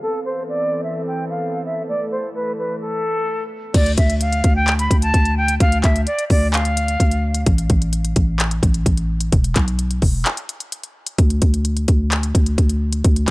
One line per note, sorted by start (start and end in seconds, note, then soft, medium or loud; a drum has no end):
0.02 1.86 E3 medium
0.02 3.71 B3 medium
0.02 1.86 C4 medium
0.02 0.20 A4 medium
0.02 3.71 A4 medium
0.25 0.43 C5 medium
0.49 0.82 D5 medium
0.84 1.01 E5 medium
1.07 1.25 G5 medium
1.30 1.63 F5 medium
1.65 1.83 E5 medium
1.88 3.73 E3 medium
1.88 3.73 A3 medium
1.88 2.06 D5 loud
2.12 2.29 C5 medium
2.35 2.52 B4 medium
2.58 2.76 B4 medium
2.81 3.44 A4 loud
3.74 3.97 D2 loud
3.74 3.92 D5 medium
3.74 kick loud
3.74 closed hi-hat medium
3.74 crash loud
3.86 closed hi-hat medium
3.98 4.42 D2 loud
3.98 4.15 E5 medium
3.98 kick loud
3.98 closed hi-hat medium
4.10 closed hi-hat medium
4.21 4.54 F5 medium
4.21 closed hi-hat medium
4.33 closed hi-hat medium
4.44 4.89 D2 loud
4.44 kick medium
4.44 closed hi-hat medium
4.56 4.73 G5 medium
4.67 clap loud
4.67 closed hi-hat medium
4.79 4.97 B5 medium
4.79 closed hi-hat medium
4.91 5.13 D2 loud
4.91 kick loud
4.91 closed hi-hat medium
5.02 5.35 A5 medium
5.02 closed hi-hat medium
5.14 5.59 D2 loud
5.14 kick medium
5.14 closed hi-hat medium
5.25 closed hi-hat soft
5.37 5.55 G5 medium
5.48 closed hi-hat medium
5.60 5.83 D2 loud
5.60 5.78 F5 loud
5.60 kick loud
5.60 closed hi-hat medium
5.72 closed hi-hat medium
5.84 6.06 D2 loud
5.84 6.01 E5 medium
5.84 kick loud
5.84 clap medium
5.84 closed hi-hat medium
5.96 closed hi-hat medium
6.07 6.25 D5 medium
6.07 closed hi-hat medium
6.19 closed hi-hat medium
6.30 6.97 D2 loud
6.30 6.48 D5 medium
6.30 kick medium
6.30 open hi-hat medium
6.54 7.43 F5 medium
6.54 clap loud
6.54 closed hi-hat medium
6.65 closed hi-hat medium
6.77 closed hi-hat medium
6.88 closed hi-hat medium
7.00 7.45 D2 loud
7.00 kick medium
7.00 closed hi-hat medium
7.11 closed hi-hat soft
7.35 closed hi-hat medium
7.46 7.69 A1 loud
7.46 kick loud
7.46 closed hi-hat medium
7.58 closed hi-hat medium
7.70 8.14 A1 loud
7.70 kick loud
7.70 closed hi-hat medium
7.82 closed hi-hat medium
7.93 closed hi-hat medium
8.05 closed hi-hat medium
8.16 8.61 A1 loud
8.16 kick medium
8.16 closed hi-hat medium
8.39 clap loud
8.39 closed hi-hat medium
8.51 closed hi-hat medium
8.63 8.85 A1 loud
8.63 kick medium
8.63 closed hi-hat medium
8.74 closed hi-hat medium
8.86 9.31 A1 loud
8.86 kick medium
8.86 closed hi-hat medium
8.97 closed hi-hat medium
9.21 closed hi-hat medium
9.32 9.55 E1 loud
9.32 kick loud
9.32 closed hi-hat medium
9.44 closed hi-hat medium
9.56 10.00 B1 loud
9.56 kick loud
9.56 clap medium
9.56 closed hi-hat medium
9.68 closed hi-hat medium
9.79 closed hi-hat medium
9.91 closed hi-hat medium
10.02 10.25 E1 loud
10.02 kick medium
10.02 open hi-hat medium
10.26 clap loud
10.26 closed hi-hat medium
10.37 closed hi-hat medium
10.49 closed hi-hat medium
10.60 closed hi-hat medium
10.72 closed hi-hat medium
10.84 closed hi-hat soft
11.07 closed hi-hat medium
11.18 11.41 D2 loud
11.18 kick loud
11.18 closed hi-hat medium
11.30 closed hi-hat medium
11.42 11.87 D2 loud
11.42 kick loud
11.42 closed hi-hat medium
11.54 closed hi-hat medium
11.65 closed hi-hat medium
11.77 closed hi-hat medium
11.88 12.33 D2 loud
11.88 kick medium
11.88 closed hi-hat medium
12.12 clap loud
12.12 closed hi-hat medium
12.23 closed hi-hat medium
12.35 12.57 D2 loud
12.35 kick loud
12.35 closed hi-hat medium
12.46 closed hi-hat medium
12.58 13.03 D2 loud
12.58 kick medium
12.58 closed hi-hat medium
12.70 closed hi-hat soft
12.93 closed hi-hat medium
13.05 13.27 D2 loud
13.05 kick loud
13.05 closed hi-hat medium
13.16 closed hi-hat medium